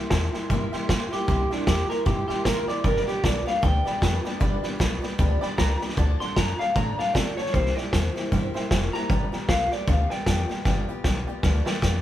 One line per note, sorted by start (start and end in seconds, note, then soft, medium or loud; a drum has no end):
0.00 0.11 A#3 soft
0.00 0.12 E4 medium
0.00 0.11 G4 medium
0.10 0.31 E2 medium
0.10 0.34 G3 medium
0.10 0.35 A#3 medium
0.10 0.34 E4 medium
0.10 0.33 G4 medium
0.10 0.24 E5 medium
0.10 0.25 G5 medium
0.10 0.25 C6 loud
0.10 kick medium
0.10 snare loud
0.10 hi-hat pedal medium
0.33 0.50 A#3 medium
0.33 0.50 E4 medium
0.33 0.50 G4 medium
0.33 0.43 E5 medium
0.33 0.44 G5 medium
0.33 0.44 C6 loud
0.33 muted upright bass stroke medium
0.33 snare soft
0.49 0.71 G2 medium
0.49 0.73 C3 loud
0.49 0.73 G3 loud
0.49 0.73 A#3 loud
0.49 0.73 E4 loud
0.49 0.72 G4 medium
0.49 0.63 E5 medium
0.49 0.64 G5 medium
0.49 0.64 C6 loud
0.49 kick loud
0.49 snare soft
0.72 0.89 A#3 soft
0.72 0.90 E4 soft
0.72 0.89 G4 medium
0.72 0.82 E5 loud
0.72 0.83 G5 loud
0.72 0.83 C6 loud
0.72 muted upright bass stroke medium
0.72 snare soft
0.88 1.10 A#2 medium
0.88 1.12 G3 medium
0.88 1.13 A#3 medium
0.88 1.13 E4 medium
0.88 1.11 G4 medium
0.88 1.02 E5 loud
0.88 1.03 G5 loud
0.88 1.03 C6 loud
0.88 kick medium
0.88 snare loud
0.88 hi-hat pedal medium
1.11 1.27 E4 soft
1.11 1.28 G4 medium
1.11 1.27 G4 loud
1.11 1.21 E5 medium
1.11 1.22 G5 medium
1.11 1.22 C6 medium
1.11 muted upright bass stroke medium
1.11 snare soft
1.15 1.27 A#3 soft
1.27 1.49 C2 medium
1.27 1.51 C3 medium
1.27 1.51 G3 medium
1.27 1.51 A#3 medium
1.27 1.50 E4 medium
1.27 1.51 G4 medium
1.27 1.49 G4 medium
1.27 1.41 E5 medium
1.27 1.42 G5 medium
1.27 1.42 C6 loud
1.27 kick loud
1.27 snare soft
1.50 1.67 A#3 soft
1.50 1.68 D4 loud
1.50 1.67 E4 medium
1.50 1.67 G4 medium
1.50 1.60 E5 medium
1.50 1.60 G5 medium
1.50 1.61 C6 medium
1.50 snare soft
1.66 1.88 E2 loud
1.66 1.90 G3 medium
1.66 1.91 A#3 medium
1.66 1.90 E4 medium
1.66 1.89 G4 medium
1.66 1.81 E5 medium
1.66 1.81 G5 medium
1.66 kick medium
1.66 snare loud
1.66 hi-hat pedal medium
1.89 2.05 A#3 soft
1.89 2.05 E4 soft
1.89 2.06 G4 medium
1.89 2.06 A#4 medium
1.89 2.00 E5 medium
1.89 2.00 G5 medium
1.89 2.00 C6 medium
1.89 muted upright bass stroke medium
1.89 snare soft
2.06 2.27 G2 medium
2.06 2.29 C3 medium
2.06 2.29 G3 medium
2.06 2.29 A#3 medium
2.06 2.29 E4 medium
2.06 2.27 G4 medium
2.06 2.27 G4 loud
2.06 2.20 E5 medium
2.06 2.20 G5 medium
2.06 2.20 C6 medium
2.06 kick loud
2.06 snare soft
2.28 2.45 A#3 soft
2.28 2.45 E4 soft
2.28 2.44 G4 medium
2.28 2.45 G4 soft
2.28 2.38 E5 loud
2.28 2.39 G5 medium
2.28 2.39 C6 loud
2.28 muted upright bass stroke medium
2.28 snare soft
2.44 2.66 A#2 medium
2.44 2.68 G3 medium
2.44 2.69 A#3 medium
2.44 2.68 E4 medium
2.44 2.67 G4 medium
2.44 2.68 A#4 medium
2.44 2.59 E5 medium
2.44 2.59 G5 medium
2.44 2.59 C6 loud
2.44 kick medium
2.44 snare loud
2.44 hi-hat pedal medium
2.67 2.85 A#3 soft
2.67 2.85 E4 medium
2.67 2.84 G4 medium
2.67 2.84 D5 medium
2.67 2.78 E5 medium
2.67 2.78 G5 medium
2.67 2.78 C6 medium
2.67 muted upright bass stroke medium
2.67 snare soft
2.83 3.06 G1 medium
2.83 3.07 G2 medium
2.83 3.08 D3 medium
2.83 3.08 F3 medium
2.83 3.08 B3 medium
2.83 3.08 D4 medium
2.83 3.07 G4 medium
2.83 3.07 A#4 loud
2.83 2.98 D5 loud
2.83 2.99 G5 medium
2.83 2.99 B5 loud
2.83 kick loud
2.83 snare soft
2.96 snare soft
3.06 3.22 F3 soft
3.06 3.23 B3 soft
3.06 3.24 D4 soft
3.06 3.23 G4 medium
3.06 3.24 G4 medium
3.06 3.17 D5 medium
3.06 3.17 G5 medium
3.06 3.17 B5 medium
3.06 muted upright bass stroke medium
3.06 snare soft
3.23 3.45 B1 medium
3.23 3.47 F3 medium
3.23 3.47 B3 medium
3.23 3.46 D4 medium
3.23 3.45 G4 medium
3.23 3.38 D5 medium
3.23 3.46 D5 loud
3.23 3.38 G5 medium
3.23 3.38 B5 medium
3.23 kick medium
3.23 snare loud
3.23 hi-hat pedal medium
3.46 3.62 F3 soft
3.46 3.62 B3 soft
3.46 3.63 D4 soft
3.46 3.62 G4 soft
3.46 3.57 D5 medium
3.46 3.63 F5 medium
3.46 3.57 G5 medium
3.46 3.57 B5 medium
3.46 muted upright bass stroke medium
3.46 snare soft
3.62 3.84 D2 loud
3.62 3.86 G2 medium
3.62 3.86 D3 medium
3.62 3.86 F3 medium
3.62 3.86 B3 loud
3.62 3.85 D4 medium
3.62 3.84 G4 medium
3.62 3.77 D5 medium
3.62 4.77 G5 loud
3.62 3.77 B5 medium
3.62 kick loud
3.62 snare soft
3.85 4.00 F3 soft
3.85 4.01 B3 soft
3.85 4.02 D4 soft
3.85 4.02 G4 soft
3.85 3.95 D5 loud
3.85 3.96 G5 medium
3.85 3.96 B5 loud
3.85 snare soft
4.01 4.23 F2 medium
4.01 4.25 F3 medium
4.01 4.25 B3 medium
4.01 4.25 D4 medium
4.01 4.24 G4 medium
4.01 4.16 D5 medium
4.01 4.16 G5 medium
4.01 4.16 B5 loud
4.01 kick medium
4.01 snare loud
4.01 hi-hat pedal medium
4.24 4.40 F3 medium
4.24 4.40 B3 medium
4.24 4.40 D4 medium
4.24 4.41 G4 medium
4.24 4.35 D5 medium
4.24 4.35 G5 medium
4.24 4.35 B5 loud
4.24 muted upright bass stroke medium
4.24 snare soft
4.40 4.62 G1 medium
4.40 4.64 G2 loud
4.40 4.64 D3 medium
4.40 4.64 F3 medium
4.40 4.64 B3 medium
4.40 4.63 D4 loud
4.40 4.62 G4 medium
4.40 4.54 D5 loud
4.40 4.55 G5 medium
4.40 4.55 B5 loud
4.40 kick loud
4.40 snare soft
4.62 4.78 F3 medium
4.62 4.79 B3 medium
4.62 4.80 D4 medium
4.62 4.80 G4 medium
4.62 4.73 D5 medium
4.62 4.74 G5 medium
4.62 4.74 B5 loud
4.62 muted upright bass stroke medium
4.62 snare soft
4.79 5.01 B1 medium
4.79 5.03 F3 medium
4.79 5.02 B3 medium
4.79 5.02 D4 medium
4.79 5.01 G4 medium
4.79 4.94 D5 medium
4.79 4.94 G5 medium
4.79 4.94 B5 loud
4.79 kick medium
4.79 snare loud
4.79 hi-hat pedal medium
5.02 5.18 F3 soft
5.02 5.18 B3 soft
5.02 5.18 D4 medium
5.02 5.19 G4 medium
5.02 5.12 D5 medium
5.02 5.13 G5 medium
5.02 5.13 B5 medium
5.02 muted upright bass stroke medium
5.02 snare soft
5.18 5.40 D2 loud
5.18 5.42 G2 medium
5.18 5.42 D3 medium
5.18 5.42 F3 loud
5.18 5.42 B3 loud
5.18 5.41 D4 medium
5.18 5.40 G4 loud
5.18 5.33 D5 medium
5.18 5.33 G5 medium
5.18 5.34 B5 loud
5.18 kick loud
5.18 snare soft
5.41 5.56 F3 medium
5.41 5.57 B3 soft
5.41 5.58 D4 soft
5.41 5.58 G4 medium
5.41 5.51 D5 loud
5.41 5.52 G5 loud
5.41 5.52 B5 loud
5.41 muted upright bass stroke medium
5.41 snare soft
5.57 5.79 C#2 medium
5.57 5.81 F3 medium
5.57 5.81 B3 medium
5.57 5.81 D4 medium
5.57 5.80 G4 medium
5.57 5.72 D5 loud
5.57 5.72 G5 medium
5.57 5.81 A#5 medium
5.57 5.72 B5 loud
5.57 kick medium
5.57 snare loud
5.57 hi-hat pedal medium
5.80 5.97 F3 medium
5.80 5.97 B3 medium
5.80 5.97 D4 medium
5.80 5.97 G4 medium
5.80 5.91 D5 medium
5.80 5.91 G5 medium
5.80 5.91 B5 medium
5.80 snare soft
5.89 snare soft
5.97 6.18 D2 medium
5.97 6.20 D3 medium
5.97 6.21 F#3 medium
5.97 6.21 C4 medium
5.97 6.20 D4 loud
5.97 6.19 A4 medium
5.97 6.11 D5 loud
5.97 6.12 F#5 loud
5.97 6.12 A5 loud
5.97 kick loud
5.97 snare soft
6.20 6.36 C4 soft
6.20 6.37 D4 medium
6.20 6.37 A4 medium
6.20 6.30 D5 medium
6.20 6.31 F#5 medium
6.20 6.31 A5 medium
6.20 6.36 C6 medium
6.20 snare soft
6.36 6.57 F#2 loud
6.36 6.60 F#3 medium
6.36 6.60 C4 medium
6.36 6.59 D4 medium
6.36 6.58 A4 medium
6.36 6.50 D5 medium
6.36 6.51 F#5 medium
6.36 6.51 A5 medium
6.36 6.59 A#5 medium
6.36 kick medium
6.36 snare loud
6.36 hi-hat pedal medium
6.59 6.75 C4 soft
6.59 6.75 D4 soft
6.59 6.76 A4 soft
6.59 6.69 D5 medium
6.59 6.75 F5 loud
6.59 6.69 F#5 medium
6.59 6.70 A5 medium
6.59 muted upright bass stroke medium
6.59 snare soft
6.75 6.96 A2 medium
6.75 6.99 D3 medium
6.75 6.99 F#3 medium
6.75 6.99 C4 medium
6.75 6.99 D4 medium
6.75 6.97 A4 medium
6.75 6.89 D5 medium
6.75 6.90 F#5 medium
6.75 6.90 A5 medium
6.75 6.98 A#5 loud
6.75 kick loud
6.75 snare soft
6.98 7.14 C4 soft
6.98 7.14 D4 soft
6.98 7.15 A4 soft
6.98 7.08 D5 medium
6.98 7.13 F5 medium
6.98 7.08 F#5 medium
6.98 7.08 A5 loud
6.98 muted upright bass stroke medium
6.98 snare soft
7.13 7.36 C3 loud
7.13 7.37 F#3 medium
7.13 7.38 C4 medium
7.13 7.38 D4 medium
7.13 7.37 A4 medium
7.13 7.36 D5 loud
7.13 7.28 D5 medium
7.13 7.29 F#5 medium
7.13 7.29 A5 loud
7.13 kick medium
7.13 snare loud
7.13 hi-hat pedal medium
7.37 7.54 C4 soft
7.37 7.54 D4 medium
7.37 7.54 A4 medium
7.37 7.53 C#5 loud
7.37 7.47 D5 medium
7.37 7.48 F#5 medium
7.37 7.48 A5 medium
7.37 muted upright bass stroke medium
7.37 snare soft
7.46 snare soft
7.53 7.74 C2 medium
7.53 7.77 C3 medium
7.53 7.77 G3 medium
7.53 7.77 A#3 medium
7.53 7.78 E4 medium
7.53 7.76 G4 medium
7.53 7.75 C5 loud
7.53 7.68 C5 medium
7.53 7.68 E5 medium
7.53 7.68 G5 loud
7.53 kick loud
7.53 snare soft
7.66 snare soft
7.75 7.94 E4 medium
7.75 7.93 G4 medium
7.75 7.86 C5 medium
7.75 7.92 D5 medium
7.75 7.86 E5 medium
7.75 7.87 G5 medium
7.75 muted upright bass stroke medium
7.75 snare soft
7.80 7.93 A#3 soft
7.92 8.14 E2 loud
7.92 8.16 G3 medium
7.92 8.17 A#3 medium
7.92 8.16 E4 medium
7.92 8.14 G4 medium
7.92 8.68 C5 loud
7.92 8.07 C5 medium
7.92 8.07 E5 medium
7.92 8.08 G5 medium
7.92 kick medium
7.92 snare loud
7.92 hi-hat pedal medium
8.15 8.31 A#3 soft
8.15 8.32 E4 soft
8.15 8.32 G4 medium
8.15 8.26 C5 medium
8.15 8.26 E5 medium
8.15 8.27 G5 medium
8.15 muted upright bass stroke medium
8.15 snare soft
8.32 8.53 G2 medium
8.32 8.55 C3 medium
8.32 8.55 G3 medium
8.32 8.55 A#3 medium
8.32 8.54 E4 loud
8.32 8.53 G4 loud
8.32 8.45 C5 medium
8.32 8.46 E5 medium
8.32 8.46 G5 medium
8.32 kick loud
8.32 snare soft
8.54 8.71 A#3 soft
8.54 8.71 E4 medium
8.54 8.71 G4 medium
8.54 8.64 C5 loud
8.54 8.65 E5 loud
8.54 8.65 G5 loud
8.54 muted upright bass stroke medium
8.54 snare soft
8.71 8.92 F1 medium
8.71 8.94 G3 medium
8.71 8.94 A#3 medium
8.71 8.94 E4 medium
8.71 8.92 G4 medium
8.71 8.85 C5 loud
8.71 8.85 E5 loud
8.71 8.85 G5 loud
8.71 kick medium
8.71 snare loud
8.71 hi-hat pedal medium
8.93 9.11 A#3 soft
8.93 9.10 E4 soft
8.93 9.10 G4 medium
8.93 9.03 C5 medium
8.93 9.04 E5 medium
8.93 9.04 G5 medium
8.93 9.47 A#5 loud
8.93 muted upright bass stroke medium
8.93 snare soft
9.09 9.30 G1 loud
9.09 9.33 G2 medium
9.09 9.33 D3 medium
9.09 9.33 F3 medium
9.09 9.33 B3 medium
9.09 9.32 F4 medium
9.09 9.31 G4 medium
9.09 9.23 B4 loud
9.09 9.24 D5 medium
9.09 9.24 G5 loud
9.09 kick loud
9.09 snare soft
9.32 9.47 F3 soft
9.32 9.48 B3 soft
9.32 9.49 F4 medium
9.32 9.49 G4 medium
9.32 9.42 B4 medium
9.32 9.42 D5 medium
9.32 9.43 G5 medium
9.32 snare soft
9.48 9.70 B1 medium
9.48 9.71 F3 medium
9.48 9.72 B3 medium
9.48 9.71 F4 medium
9.48 9.70 G4 medium
9.48 9.62 B4 medium
9.48 9.62 D5 medium
9.48 9.71 F5 loud
9.48 9.63 G5 medium
9.48 kick medium
9.48 snare loud
9.48 hi-hat pedal medium
9.71 9.87 F3 soft
9.71 9.87 B3 soft
9.71 9.87 F4 medium
9.71 9.88 G4 medium
9.71 9.81 B4 medium
9.71 9.81 D5 medium
9.71 9.88 D5 medium
9.71 9.81 G5 medium
9.71 muted upright bass stroke medium
9.71 snare soft
9.87 10.08 D2 loud
9.87 10.10 G2 medium
9.87 10.11 D3 medium
9.87 10.11 F3 medium
9.87 10.11 B3 medium
9.87 10.10 F4 medium
9.87 10.10 G4 medium
9.87 10.01 B4 medium
9.87 10.01 D5 medium
9.87 10.10 F5 medium
9.87 10.02 G5 medium
9.87 kick loud
9.87 snare soft
10.09 10.26 B3 soft
10.09 10.27 F4 soft
10.09 10.27 G4 soft
10.09 10.20 B4 loud
10.09 10.20 D5 medium
10.09 10.20 G5 loud
10.09 10.86 G5 medium
10.09 snare soft
10.13 10.25 F3 soft
10.26 10.47 F2 medium
10.26 10.50 F3 medium
10.26 10.50 B3 medium
10.26 10.49 F4 medium
10.26 10.48 G4 medium
10.26 10.40 B4 medium
10.26 10.40 D5 medium
10.26 10.41 G5 loud
10.26 kick medium
10.26 snare loud
10.26 hi-hat pedal medium
10.48 10.65 F3 soft
10.48 10.65 B3 soft
10.48 10.66 F4 medium
10.48 10.66 G4 medium
10.48 10.59 B4 medium
10.48 10.59 D5 medium
10.48 10.59 G5 medium
10.48 muted upright bass stroke medium
10.48 snare soft
10.65 10.86 G1 medium
10.65 10.88 G2 medium
10.65 10.89 D3 medium
10.65 10.89 F3 medium
10.65 10.89 B3 medium
10.65 10.89 F4 medium
10.65 10.88 G4 medium
10.65 10.79 B4 loud
10.65 10.80 D5 loud
10.65 10.80 G5 loud
10.65 kick loud
10.65 snare medium
10.88 11.04 F3 medium
10.88 11.04 B3 medium
10.88 11.05 F4 medium
10.88 11.05 G4 medium
10.88 10.98 B4 medium
10.88 10.98 D5 medium
10.88 10.99 G5 medium
11.03 11.25 B1 medium
11.03 11.28 F3 medium
11.03 11.28 B3 medium
11.03 11.28 F4 medium
11.03 11.26 G4 medium
11.03 11.18 B4 medium
11.03 11.18 D5 medium
11.03 11.18 G5 loud
11.03 kick medium
11.03 snare medium
11.03 hi-hat pedal medium
11.26 11.43 B3 medium
11.26 11.43 F4 medium
11.26 11.44 G4 medium
11.26 11.36 B4 medium
11.26 11.37 D5 medium
11.26 11.37 G5 loud
11.26 muted upright bass stroke medium
11.30 11.43 F3 soft
11.42 11.64 D2 medium
11.42 11.66 G2 medium
11.42 11.66 D3 medium
11.42 11.67 F3 loud
11.42 11.66 B3 loud
11.42 11.65 F4 loud
11.42 11.64 G4 loud
11.42 11.57 B4 medium
11.42 11.57 D5 medium
11.42 11.57 G5 medium
11.42 kick loud
11.42 snare medium
11.65 11.81 F3 soft
11.65 11.81 B3 soft
11.65 11.82 F4 medium
11.65 11.82 G4 medium
11.65 11.75 B4 loud
11.65 11.76 D5 loud
11.65 11.76 G5 loud
11.65 muted upright bass stroke medium
11.65 snare medium
11.82 12.02 F2 medium
11.82 12.02 F3 medium
11.82 12.02 B3 medium
11.82 12.02 F4 medium
11.82 12.02 G4 medium
11.82 11.96 B4 loud
11.82 11.96 D5 medium
11.82 11.96 G5 loud
11.82 kick medium
11.82 snare medium
11.82 hi-hat pedal medium